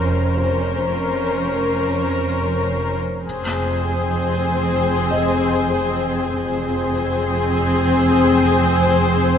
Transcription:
0.04 2.99 F1 soft
0.04 2.99 F2 soft
0.04 2.99 C#4 soft
0.04 2.99 A#4 soft
0.04 2.98 C5 soft
0.37 2.24 C5 soft
3.23 6.32 F1 soft
3.23 6.32 F2 soft
3.23 6.32 C4 soft
3.23 6.32 G#4 soft
3.23 6.31 C5 soft
5.11 6.93 D#5 soft
6.34 9.38 F1 soft
6.34 9.38 F2 soft
6.34 9.38 C4 soft
6.34 9.38 G#4 soft
6.34 9.38 C5 soft

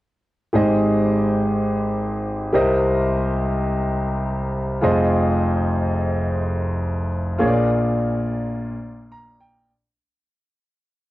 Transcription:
0.53 2.50 G#1 medium
0.53 2.50 G#2 medium
0.53 2.49 G4 medium
0.53 2.50 G#4 medium
0.53 2.50 C5 medium
0.53 2.51 D#5 medium
2.53 4.79 C2 medium
2.53 4.79 C3 medium
2.53 4.78 G4 medium
2.53 4.78 A#4 medium
2.53 4.79 C5 medium
2.53 4.79 D#5 medium
4.81 7.07 F1 medium
4.81 7.07 F2 medium
4.81 7.07 F4 medium
4.81 7.07 G#4 medium
4.81 7.07 C5 medium
4.81 7.08 D#5 medium
7.38 9.64 A#1 medium
7.38 9.64 A#2 medium
7.38 9.64 F4 medium
7.38 9.64 G#4 medium
7.38 9.64 A#4 medium
7.38 7.47 C#5 medium
7.47 9.68 D5 medium
9.12 9.38 A#5 medium
9.40 9.67 G5 medium

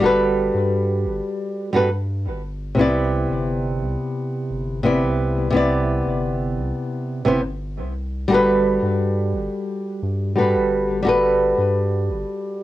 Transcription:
0.00 0.50 G1 medium
0.00 1.69 G3 loud
0.00 1.70 F#4 medium
0.00 1.71 A4 medium
0.06 1.72 B4 loud
0.54 1.07 G2 medium
1.05 1.21 G1 medium
1.73 2.28 G2 medium
1.73 1.88 G3 medium
1.73 1.88 F#4 medium
1.73 1.89 A4 medium
1.73 1.89 B4 loud
2.27 2.74 G1 medium
2.75 3.26 C2 loud
2.75 4.79 C3 loud
2.75 4.80 B3 medium
2.79 4.82 E4 medium
2.79 4.83 D5 loud
3.30 3.83 G1 loud
3.81 3.97 C2 medium
4.50 5.05 G1 medium
4.83 5.49 C3 medium
4.83 5.50 B3 medium
4.83 5.50 E4 medium
4.83 5.51 D5 medium
5.03 5.50 C2 medium
5.50 6.02 C2 loud
5.50 7.21 C3 loud
5.50 7.22 B3 medium
5.50 7.23 E4 medium
5.56 7.24 D5 loud
6.06 6.59 G1 loud
6.57 6.73 C2 medium
7.25 7.80 G1 medium
7.25 7.39 C3 medium
7.25 7.40 B3 medium
7.25 7.41 E4 medium
7.25 7.41 C5 medium
7.79 8.26 C2 medium
8.28 8.78 G1 loud
8.28 10.32 G3 loud
8.28 10.33 F#4 medium
8.32 10.34 A4 medium
8.32 10.35 B4 loud
8.82 9.35 G2 medium
9.33 9.49 G1 medium
10.03 10.57 G2 medium
10.36 11.01 G3 medium
10.36 11.02 F#4 medium
10.36 11.02 A4 medium
10.36 11.03 B4 medium
10.55 11.02 G1 medium
11.02 11.54 G1 loud
11.02 12.63 G3 loud
11.02 12.63 F#4 medium
11.02 12.63 A4 medium
11.09 12.63 B4 loud
11.58 12.11 G2 loud
12.09 12.25 G1 medium

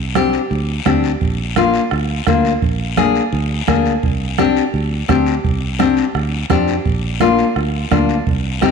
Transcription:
0.00 0.37 C2 medium
0.15 0.40 C4 medium
0.15 0.40 D4 medium
0.15 0.41 G4 medium
0.15 bombo rim medium
0.15 high conga medium
0.15 short guiro medium
0.33 short guiro medium
0.51 0.79 D2 medium
0.51 high conga soft
0.51 long guiro medium
0.85 1.14 D2 medium
0.85 1.10 C4 medium
0.85 1.11 D4 medium
0.85 1.11 G4 medium
0.85 bombo low medium
0.85 bombo rim medium
0.85 high conga medium
0.85 short guiro medium
1.04 short guiro medium
1.21 1.78 A#1 medium
1.21 bombo low medium
1.21 high conga soft
1.21 long guiro medium
1.56 1.81 A#3 medium
1.56 1.81 D4 medium
1.56 1.82 F4 medium
1.56 bombo rim medium
1.56 high conga medium
1.56 short guiro medium
1.74 short guiro medium
1.91 2.20 D2 medium
1.91 bombo rim medium
1.91 high conga soft
1.91 long guiro medium
2.27 2.55 D2 medium
2.27 2.52 A#3 medium
2.27 2.52 D4 medium
2.27 2.52 F4 medium
2.27 bombo low medium
2.27 bombo rim medium
2.27 high conga medium
2.27 short guiro medium
2.45 short guiro medium
2.62 3.19 A#1 medium
2.62 bombo low medium
2.62 high conga soft
2.62 long guiro medium
2.97 3.22 A#3 medium
2.97 3.22 D4 medium
2.97 3.22 G#4 medium
2.97 bombo rim medium
2.97 high conga medium
2.97 short guiro medium
3.15 short guiro medium
3.33 3.61 D2 medium
3.33 high conga soft
3.33 long guiro medium
3.67 3.96 D2 medium
3.67 3.92 A#3 medium
3.67 3.93 D4 medium
3.67 3.93 G#4 medium
3.67 bombo low medium
3.67 bombo rim medium
3.67 high conga medium
3.67 short guiro medium
3.86 short guiro medium
4.03 4.60 C2 medium
4.03 bombo low medium
4.03 high conga soft
4.03 long guiro medium
4.38 4.63 C4 medium
4.38 4.63 D4 medium
4.38 4.63 G4 medium
4.38 bombo rim medium
4.38 high conga medium
4.38 short guiro medium
4.56 short guiro medium
4.74 5.02 D2 medium
4.74 high conga soft
4.74 long guiro medium
5.08 5.37 D2 medium
5.08 5.33 C4 medium
5.08 5.34 D4 medium
5.08 5.34 G4 medium
5.08 bombo low medium
5.08 bombo rim medium
5.08 high conga medium
5.08 short guiro medium
5.26 short guiro medium
5.44 6.01 C2 medium
5.44 bombo low medium
5.44 high conga soft
5.44 long guiro medium
5.79 6.04 C4 medium
5.79 6.04 D4 medium
5.79 6.04 G4 medium
5.79 bombo rim medium
5.79 high conga medium
5.79 short guiro medium
5.97 short guiro medium
6.15 6.43 D2 medium
6.15 bombo rim medium
6.15 high conga soft
6.15 long guiro medium
6.50 6.78 F2 medium
6.50 6.75 C4 medium
6.50 6.75 D4 medium
6.50 6.75 G4 medium
6.50 bombo low medium
6.50 bombo rim medium
6.50 high conga medium
6.50 short guiro medium
6.68 short guiro medium
6.85 7.42 A#1 medium
6.85 bombo low medium
6.85 high conga soft
6.85 long guiro medium
7.20 7.45 A#3 medium
7.20 7.45 D4 medium
7.20 7.46 F4 medium
7.20 bombo rim medium
7.20 high conga medium
7.20 short guiro medium
7.39 short guiro medium
7.56 7.84 D2 medium
7.56 bombo rim medium
7.56 high conga soft
7.56 long guiro medium
7.91 8.20 D2 medium
7.91 8.16 A#3 medium
7.91 8.16 D4 medium
7.91 8.16 F4 medium
7.91 bombo low medium
7.91 bombo rim medium
7.91 high conga medium
7.91 short guiro medium
8.09 short guiro medium
8.27 8.71 C2 medium
8.27 bombo low medium
8.27 high conga soft
8.27 long guiro medium
8.61 8.71 C4 medium
8.61 8.71 D#4 medium
8.61 8.71 G4 medium
8.61 bombo rim medium
8.61 high conga medium
8.61 short guiro medium

